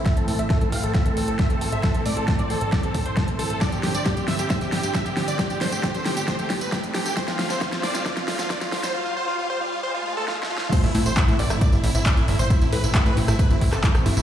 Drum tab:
CC |------------------------------------------------|------------------------------------------------|------------------------------------------------|------------------------------------------------|
HH |x--x--o--x--x--x--o--x--x--x--o--x--x--x--o--x--|x--x--o--x--x--x--o--x--x--x--o--x--x--x--o--x--|x--x--o--x--x--x--o--x--x--x--o--x--x--x--o--x--|x--x--o--x--x--x--o--x--x--x--o--x--x--x--o--x--|
TB |------------------------------------------------|------------------------------------------------|x--x-----x--x--x-----x--x--x-----x--x--x-----x--|x--x-----x--x--x-----x--x--x-----x--x--x-----x--|
CP |------------------------------------------------|------------------------------------------------|------------------------------------------------|------------------------------------------------|
SD |o-----------o-----------o-----------o-----------|o-----------o-----------o-----------o-----------|o-----o-----o-----o-----o-----o-----o-----o-----|o-----o-----o-----o-----o-----o-----o-----o-----|
BD |o-----------o-----------o-----------o-----------|o-----------o-----------o-----o-----o-----------|o-----------o-----------o-----------o-----------|o-----------o-----------o-----o-----o-----------|

CC |------------------------------------------------|------------------------------------------------|x-----------------------------------------------|------------------------------------------------|
HH |x--x--o--x--x--x--o--x--x--x--o--x--x--x--o--x--|------------------------------------------------|x--x--o--x--x--x--o--x--x--x--o--x--x--x--o--x--|x--x--o--x--x--x--o--x--x--x--o-----x--x--o--o--|
TB |x--x-----x--x--x-----x--x--x-----x--x--x-----x--|------------------------------------------------|x--x-----x--x--x-----x--x--x-----x--x--x-----x--|x--x-----x--x--x-----x--x--x-----x--x--x-----x--|
CP |------------------------------------------------|------------------------------------------------|------------x-----------------------x-----------|------------x--------------------x--x-----------|
SD |o--o--o--o--o--o--o--o--o--o--o--o--o--o--o--o--|------------------------------------o---o---o---|---------------------r--------------------------|---------------------r-----------r-----r--------|
BD |o-----------o-----------o-----------o-----------|------------------------------------------------|o-----------o-----------o-----------o-----------|o-----------o-----------o-----o-----o-----------|